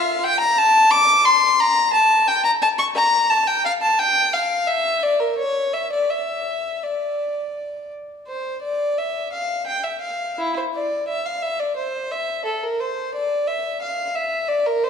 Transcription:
Already playing: F4 F5
0.24 G5
0.40 A#5
0.58 A5
0.91 D6
1.25 C6
1.60 A#5
1.93 A5
2.28 G5
2.44 A#5
2.62 A5
2.78 C#6
2.95 A#5
3.30 A5
3.47 G5
3.65 F5
3.82 A5
3.99 G5
4.33 F5
4.68 E5
5.03 D5
5.20 A#4
5.38 C#5
5.73 E5
5.92 D5
6.10 E5
6.83 D5
8.27 C5
8.62 D5
8.98 E5
9.32 F5
9.67 G5
9.83 E5
10.01 F5
10.38 E4
10.57 C5
10.74 D5
11.08 E5
11.25 F5
11.42 E5
11.59 D5
11.76 C5
12.11 E5
12.45 A4
12.63 A#4
12.80 C5
13.14 D5
13.47 E5
13.82 F5
14.15 E5
14.48 D5
14.66 A#4
14.84 C5

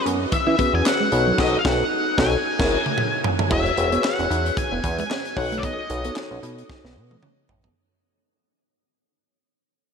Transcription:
0.06 F#2 B3, closed hi-hat
0.32 E3 E5, muted clean electric guitar stroke, kick, closed hi-hat
0.47 E3 C#4
0.58 B3 C#4 F#4 G#4 B4, kick, closed hi-hat
0.74 E2 G#5
0.86 F#5, snare, clap, closed hi-hat
1.00 G#3
1.12 B1 D#4 F#4 A4 C#5, muted clean electric guitar stroke, closed hi-hat
1.27 F#3
1.38 B1 D#4 F#4 A4 D#5, kick, snare, crash
1.59 F5
1.65 B1 D#4 F#4 A4 F#5, kick, snare
2.17 B1 D#4 F#4 A4 G#5, kick, snare
2.59 F#1 E4 G#4 A#4 C#5, kick, snare, crash
2.86 mid tom
2.98 mid tom
3.24 floor tom
3.39 floor tom
3.50 E1 E4 F#4 G#4 B4 C#5 E5, kick, crash
3.66 closed hi-hat
3.77 E1 F#4 G#4 B4 C#5, muted clean electric guitar stroke, closed hi-hat
3.92 B3 F#4 G#4 B4 C#5, closed hi-hat
4.04 F#5, muted clean electric guitar stroke, snare, clap
4.18 E1 C#4, closed hi-hat
4.30 E2 D#4, closed hi-hat
4.46 closed hi-hat
4.57 G#5, kick, closed hi-hat
4.72 E1 B3
4.83 E2, muted clean electric guitar stroke, kick, closed hi-hat
4.98 G#3 G#5, closed hi-hat
5.10 C#4, snare, clap
5.25 closed hi-hat
5.36 B1 D#4 F#4 A4 C#5 F#5, muted clean electric guitar stroke, kick, open hi-hat
5.52 A3, closed hi-hat
5.58 D5
5.63 B3 D#5, kick, closed hi-hat
5.89 B1 D#4 F#4 A4 C#5, muted clean electric guitar stroke, closed hi-hat
6.04 B3 D#4 F#4 A4 C#5, closed hi-hat
6.16 muted clean electric guitar stroke, snare, clap
6.31 B1 C#4
6.43 B2 D#4, closed hi-hat
6.58 closed hi-hat
6.69 kick, snare
6.84 B1 B3, snare
6.96 B2, muted clean electric guitar stroke
7.11 A3, high tom
7.23 C#4, mid tom
7.49 A1, muted clean electric guitar stroke, floor tom
7.64 B3, floor tom

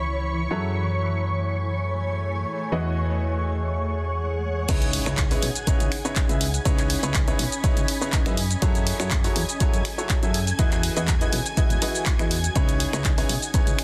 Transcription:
Already playing: C#2 C#3 E3 D#4 E4 G#4 B4 C#5 B5 C#6
0.51 F#2 F#3 E4 F#4 G#4 A4 C#5
0.58 A3
0.67 G#5
2.72 E2 E3 E4 F#4 G#4 B4 D#5
2.81 G#4
3.30 F#5
4.69 C#2 C#3 C#4 D#4 E4 G#4 B4 C#5 G#5 G#6, kick, closed hi-hat, crash, impact, shaker
4.82 closed hi-hat, shaker
4.93 open hi-hat
5.06 C#2 C#3 D#4 E4 G#4 B4 C#5, finger snap, shaker
5.17 kick, clap, closed hi-hat, shaker
5.28 C#3 D#4 E4 G#4 B4 C#5 D#5, open hi-hat, shaker
5.42 B1, open hi-hat
5.56 closed hi-hat, shaker
5.67 C#3 D#4 E4 G#4 B4 C#5 B5, kick, closed hi-hat, shaker
5.80 C#2, closed hi-hat, shaker
5.92 finger snap, open hi-hat
6.05 C#3 D#4 E4 G#4 B4 C#5, shaker
6.16 kick, clap, closed hi-hat, shaker
6.29 C#2 C#3 D#4 E4 G#4 B4 E5, closed hi-hat, shaker
6.41 open hi-hat
6.54 closed hi-hat, shaker
6.65 C#2 C#3 D#4 E4 G#4 B4 C#5, kick, closed hi-hat, shaker
6.78 clap, closed hi-hat, shaker
6.90 open hi-hat
7.03 C#2 C#3 D#4 E4 G#4 B4 C#5, closed hi-hat, shaker
7.14 kick, clap, closed hi-hat, shaker
7.28 C#3 D#4 E4 G#4 B4 C#5, closed hi-hat, shaker
7.39 B1, open hi-hat
7.52 closed hi-hat, shaker
7.64 C#3 D#4 E4 G#4 B4 C#5, kick, closed hi-hat, shaker
7.77 C#2, closed hi-hat, shaker
7.88 open hi-hat
8.01 C#3 D#4 E4 G#4 B4 C#5, shaker
8.12 kick, clap, closed hi-hat, shaker
8.26 F#2 D#4 E4 G#4 B4 E5, finger snap, closed hi-hat, shaker
8.37 open hi-hat
8.51 closed hi-hat, shaker
8.62 F#2 F#3 E4 F#4 G#4 A4 C#5, kick, closed hi-hat, shaker
8.72 A4, closed hi-hat, shaker
8.87 open hi-hat
9.00 F#2 F#3 E4 F#4 G#4 A4 C#5, finger snap, closed hi-hat, shaker
9.11 kick, clap, closed hi-hat, shaker
9.24 F#3 E4 F#4 G#4 A4 C#5, open hi-hat, shaker
9.30 G#5
9.36 E2, open hi-hat
9.49 closed hi-hat, shaker
9.60 F#3 E4 F#4 G#4 A4 C#5, kick, closed hi-hat, shaker
9.74 F#2, closed hi-hat, shaker
9.85 finger snap, open hi-hat
9.98 F#3 E4 F#4 G#4 A4 C#5, shaker
10.09 kick, clap, closed hi-hat, shaker
10.23 F#2 F#3 E4 F#4 G#4 A4 E5, closed hi-hat, shaker
10.34 open hi-hat
10.47 closed hi-hat, shaker
10.59 E2 E3 E4 F#4 G#4 B4 D#5, kick, closed hi-hat, shaker
10.71 clap, closed hi-hat, shaker
10.83 open hi-hat
10.96 E2 E3 E4 F#4 G#4 B4 D#5, closed hi-hat, shaker
11.08 kick, clap, closed hi-hat, shaker
11.17 E3 E4 F#4 G#4 B4 D#5, closed hi-hat
11.21 D#5, shaker
11.33 B1, open hi-hat
11.46 closed hi-hat, shaker
11.57 E3 E4 F#4 G#4 B4 D#5, kick, closed hi-hat, shaker
11.70 E1, closed hi-hat, shaker
11.82 E3 E4 F#4 G#4 B4 D#5, open hi-hat
11.95 shaker
12.06 kick, clap, closed hi-hat, shaker
12.19 E2 E3 E4 F#4 G#4 B4 D#5, finger snap, closed hi-hat, shaker
12.31 open hi-hat
12.44 closed hi-hat, shaker
12.56 C#2 C#3 C#4 D#4 E4 G#4 B4 C#5, kick, closed hi-hat, shaker
12.69 closed hi-hat, shaker
12.80 open hi-hat
12.93 C#2 C#3 D#4 E4 G#4 B4 C#5, finger snap, closed hi-hat, shaker
13.04 kick, clap, closed hi-hat, shaker
13.18 C#3 D#4 E4 G#4 B4 C#5, open hi-hat, shaker
13.29 B1 B5, open hi-hat
13.42 closed hi-hat, shaker
13.54 C#3 D#4 E4 G#4 B4 C#5, kick, closed hi-hat, shaker
13.67 C#2, closed hi-hat, shaker
13.79 finger snap, open hi-hat

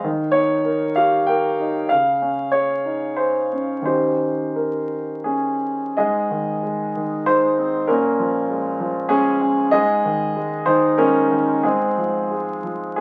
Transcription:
0.04 D#3
0.31 D#4 C#5
0.65 A#4
0.96 G4 F5
1.27 A#4 G5
1.60 D#4
1.89 C#3 F5
2.22 C#4
2.52 G#4 C#5
2.85 D#4
3.17 G#4 C5
3.52 C#4
3.82 D#3 C#4 D#4 C5
3.86 G4
4.56 A#4
5.24 C#4 G#4
5.97 G#2 G#4 D#5
6.31 D#3
6.63 G#3
6.96 D#3
7.26 G#3 D#4 C5
7.58 C4
7.87 A#2 C#4 A#4
8.19 F3
8.50 G#3
8.80 F3
9.09 G#3 C#4 G#4
9.42 C#4
9.71 G#2 G#4 D#5
10.05 D#3
10.36 G#3
10.66 D#3 D#4 C5
10.98 G#3 C#4 A#4
11.31 D#3
11.63 G#2 C4 G#4
11.98 F3
12.31 G#3
12.63 F3
12.96 G#4

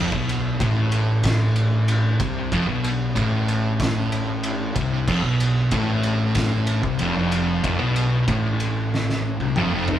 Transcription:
Already playing: F1 F2
0.12 B1 B2, kick
0.29 ride
0.60 A1 A2, kick, ride
0.92 ride
1.23 kick, snare, ride
1.56 ride
1.88 ride
2.20 C2 C3, kick, ride
2.52 F1 F2, kick, ride
2.68 B1 B2
2.84 ride
3.15 A1 A2, kick, ride
3.48 ride
3.80 kick, snare, ride
4.12 ride
4.43 ride
4.76 C2 C3, kick, ride
5.08 F1 F2, kick, crash
5.24 B1 B2
5.40 ride
5.71 A1 A2, kick, ride
6.03 ride
6.35 kick, snare, ride
6.67 ride
6.83 C2 C3, kick
6.99 F1 F2, ride
7.16 F1 F2
7.32 ride
7.64 F1 F2, kick, ride
7.80 B1 B2
7.96 ride
8.27 A1 A2, kick, ride
8.60 ride
8.94 snare
9.10 snare
9.40 C2 C3, high tom
9.56 F1 F2, mid tom
9.72 F1 F2
9.88 floor tom

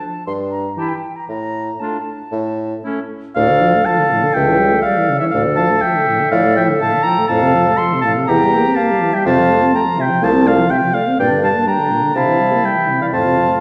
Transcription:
Already playing: A5
0.27 G2 C6
0.51 A#5
0.77 E3 E4 G4 A5
0.89 G5
1.16 A#5
1.28 A2 A#5
1.80 A3 D4 F4 A5
2.32 A2
2.84 A3 C#4 E4
3.36 D2 A2 A4 D5 F5
3.50 D3
3.62 F3
3.75 A3
3.85 F3 F5 A5
3.99 D3
4.12 A2
4.24 D3
4.34 C#2 C#3 E5 G5
4.48 E3
4.59 G3
4.72 A3
4.82 G3 D5 F5
4.97 E3
5.09 C#3
5.20 E3 C#5 E5
5.31 D2 A2 D5 F5
5.46 D3
5.56 F3 F5 A5
5.70 A3
5.82 F3 E5 G5
5.96 D3
6.08 A2
6.21 D3
6.32 A2 F3 D5 F5
6.45 A3
6.57 F3 E5 G5
6.69 D3
6.81 A2 F5 A5
6.94 D3
7.03 F3 G5 A#5
7.18 A3
7.28 F2 A2 A4 F5 A5
7.42 C3
7.55 F3
7.67 A3
7.77 F3 A5 C6
7.93 C3
8.02 A2 F5 A5
8.17 C3
8.27 E2 E3 G4 G5 A#5
8.42 G3
8.54 A#3
8.66 C4
8.75 A#3 F5 A5
8.91 G3
9.02 E3
9.13 G3 E5 G5
9.25 F2 C3 F4 F5 A5
9.38 F3
9.51 A3
9.62 C4
9.74 A3 G5 A#5
9.87 F3
9.99 C3 E5 G5
10.11 F3
10.22 C2 A3 F5 A5
10.34 C4
10.46 A3 D5 F5
10.58 F3
10.70 C3 E5 G5
10.83 F3
10.94 A3 D5 F5
11.07 C4
11.19 G2 A#2 D4 D5 G5
11.31 D3
11.43 G3 F5 A5
11.55 A#3
11.67 G3 G5 A#5
11.78 D3
11.90 A#2
12.03 D3
12.15 C3 E4 F5 A5
12.28 E3
12.40 G3
12.52 A#3
12.64 G3 E5 G5
12.77 E3
12.89 C3
13.01 E3 D5 F5
13.12 F2 A2 F4 F5 A5
13.25 C3
13.37 F3
13.49 A3

